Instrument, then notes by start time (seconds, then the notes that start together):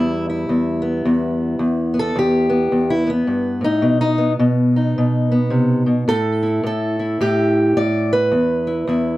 steel-string acoustic guitar
Already playing: E2 G3 E4
0.30 E4
0.49 E2
0.82 B3
1.05 E2
1.59 E2
1.94 B3
1.99 A4
2.16 E2 G4
2.50 B3
2.72 E2
2.90 E4
3.07 B3
3.27 G2
3.61 A2 D#4
3.82 B2
4.01 D#4
4.18 B3
4.39 B2
4.76 D#4
4.98 B2
5.32 B3
5.50 C3
5.86 B2
6.08 A2 A4
6.43 E4
6.64 A2 A4
6.99 E4
7.21 A2 G4
7.77 A2 D5
8.13 B4
8.32 E2
8.67 E4
8.87 E2 E4